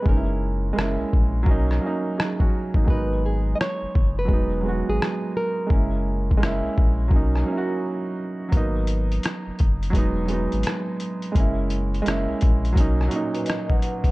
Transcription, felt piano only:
X:1
M:4/4
L:1/16
Q:"Swing 16ths" 1/4=85
K:B
V:1 name="Felt piano"
z12 [DG] [CF]2 [A,D]- | [A,D] z12 z3 | z16 | z16 |
z16 |]
V:2 name="Felt piano"
[G,A,CDE]4 [G,A,CE]4 [F,A,CD]2 [F,A,CD]6 | [F,G,B,D]8 [F,G,B,D]2 [F,G,B,F]6 | [G,A,CE]4 [G,A,CE]4 [F,A,CD]2 [F,A,CEF]6 | [F,A,B,D]8 [F,G,B,D]2 [F,G,B,D]6 |
[G,A,CE]4 [G,A,CE]4 [F,A,CD]2 [A,,F,CD]6 |]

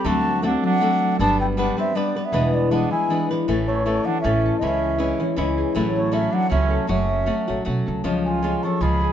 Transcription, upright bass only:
X:1
M:3/4
L:1/8
Q:"Swing" 1/4=158
K:Em
V:1 name="Upright bass" clef=bass
D,,4 z2 | G,,,4 z2 | E,,,4 z2 | [K:A] A,,,4 A,,,2 |
C,,4 C,,2 | A,,,4 C,,2 | F,,,3 A,,, B,,, C,, | C,,4 C,,2 |]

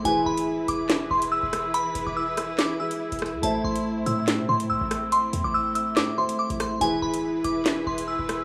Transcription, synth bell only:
X:1
M:4/4
L:1/16
Q:1/4=142
K:Am
V:1 name="Synth bell"
^g2 b4 d'2 z2 c'2 e'4 | b3 d' e'2 e'2 d'2 e'6 | a2 c'4 e'2 z2 c'2 e'4 | c'3 d' e'2 e'2 d'2 c'2 d'2 c'2 |
^g2 b4 d'2 z2 c'2 e'4 |]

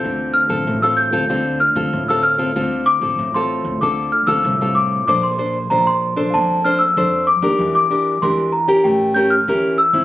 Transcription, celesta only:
X:1
M:4/4
L:1/16
Q:1/4=95
K:Dm
V:1 name="Celesta"
g'2 f'3 e' g'4 f'3 e' f'2- | f'2 d'3 c'3 d'2 f' e'3 d'2 | d' c'3 b c'3 a2 f' e'3 d'2- | d' d'3 c'2 b2 g2 g' f'3 e'2 |]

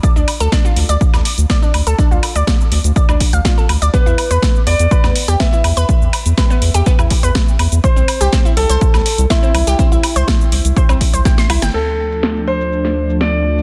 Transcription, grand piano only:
X:1
M:4/4
L:1/8
Q:1/4=123
K:Ddor
V:1 name="Grand piano"
z8 | z8 | B3 d3 e2- | e8 |
c3 A3 E2- | E8 | A3 c3 d2 |]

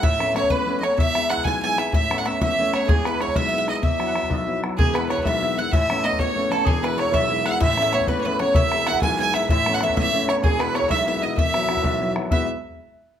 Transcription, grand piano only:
X:1
M:6/8
L:1/8
Q:3/8=127
K:E
V:1 name="Grand piano"
A,, [A,B,C] [A,B,C] E,, [A,B,C] [A,B,C] | E,, [G,B,E] [G,B,E] B,,, [G,B,E] [G,B,E] | A,, [A,B,C] [A,B,C] E,, [A,B,C] [A,B,C] | E,, [G,B,E] [G,B,E] B,,, [G,B,E] [G,B,E] |
E,, [F,B,E] [F,B,E] B,,, [F,B,E] [F,B,E] | [E,,,E,,] [G,B,E] [G,B,E] B,,, [G,B,E] [G,B,E] | [A,,,A,,] [A,B,C] [A,B,C] E,, [A,B,C] [A,B,C] | [E,,,E,,] [G,B,E] [G,B,E] B,,, [G,B,E] [G,B,E] |
[A,,,A,,] [A,B,C] [A,B,C] E,, [A,B,C] [A,B,C] | [E,,,E,,] [G,B,E] [G,B,E] B,,, [G,B,E] [G,B,E] | [A,,,A,,] [A,B,C] [A,B,C] E,, [A,B,C] [A,B,C] | [E,,,E,,] [G,B,E] [G,B,E] B,,, [G,B,E] [G,B,E] |
[E,,,E,,] [F,B,E] [F,B,E] B,,, [F,B,E] [F,B,E] | [E,,B,,G,B,EB] z4 z |]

